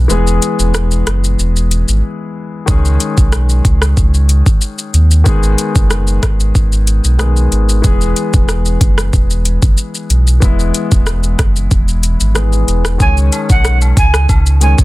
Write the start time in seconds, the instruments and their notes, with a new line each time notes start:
0.08 sub bass E1, grand piano E3 G#3 B3 G#4, shaker
0.27 shaker
0.42 closed hi-hat, shaker
0.59 sub bass E1, shaker
0.74 cross-stick, shaker
0.91 shaker
1.07 sub bass F#1, cross-stick, closed hi-hat, shaker
1.24 shaker
1.39 sub bass E1, shaker
1.56 shaker
1.71 closed hi-hat, shaker
1.88 sub bass G#1, shaker
2.66 sub bass C#2, grand piano D#3 G#3 C#4 G#4, kick, shaker
2.85 shaker
3.00 closed hi-hat, shaker
3.17 sub bass B1, kick, shaker
3.33 cross-stick, shaker
3.49 shaker
3.65 sub bass C#2, kick, closed hi-hat, shaker
3.82 cross-stick, shaker
3.97 sub bass C#2, kick, shaker
4.14 shaker
4.29 closed hi-hat, shaker
4.46 sub bass G#1, kick, shaker
4.61 shaker
4.78 shaker
4.94 sub bass D#2, closed hi-hat, shaker
5.11 shaker
5.24 sub bass G#1, grand piano D#3 G#3 B3 G#4, kick, shaker
5.43 shaker
5.58 closed hi-hat, shaker
5.75 sub bass F#1, kick, shaker
5.91 cross-stick, shaker
6.07 shaker
6.23 sub bass G#1, kick, cross-stick, closed hi-hat, shaker
6.40 shaker
6.55 sub bass G#1, kick, shaker
6.72 shaker
6.87 closed hi-hat, shaker
7.04 sub bass B1, shaker
7.19 grand piano D#3 G#3 B3 G#4, cross-stick, shaker
7.37 shaker
7.52 sub bass G#1, closed hi-hat, shaker
7.69 shaker
7.82 sub bass E1, grand piano E3 G#3 B3 G#4, kick, shaker
8.01 shaker
8.16 closed hi-hat, shaker
8.34 sub bass E1, kick, shaker
8.49 cross-stick, shaker
8.66 shaker
8.81 sub bass F#1, kick, closed hi-hat, shaker
8.98 cross-stick, shaker
9.13 sub bass E1, kick, shaker
9.30 shaker
9.45 closed hi-hat, shaker
9.62 sub bass F#1, kick, shaker
9.77 shaker
9.95 shaker
10.10 sub bass B1, closed hi-hat, shaker
10.27 shaker
10.40 sub bass E1, grand piano E3 G#3 B3 E4, kick, shaker
10.59 shaker
10.74 closed hi-hat, shaker
10.92 sub bass E1, kick, shaker
11.07 cross-stick, shaker
11.23 shaker
11.39 sub bass F#1, kick, cross-stick, closed hi-hat, shaker
11.56 shaker
11.71 sub bass E1, kick, shaker
11.88 shaker
12.03 closed hi-hat, shaker
12.20 sub bass G#1, shaker
12.35 grand piano E3 G#3 B3 G#4, cross-stick, shaker
12.53 shaker
12.68 sub bass E1, closed hi-hat, shaker
12.85 cross-stick, shaker
12.98 sub bass C#2, grand piano D#3 G#3 C#4 G#4 C#5, flute G#5, kick, shaker
13.17 shaker
13.32 closed hi-hat, cabasa, high woodblock, shaker
13.49 sub bass B1, flute F#5, kick, shaker
13.65 cross-stick, shaker
13.81 high woodblock, shaker
13.97 sub bass C#2, flute G#5, kick, closed hi-hat, cabasa, shaker
14.14 cross-stick, shaker
14.29 sub bass C#2, kick, high woodblock, shaker
14.46 shaker
14.61 grand piano D#3 G#3 C#4 G#4 C#5, flute G#5, closed hi-hat, cabasa, shaker
14.78 sub bass G#1, kick, shaker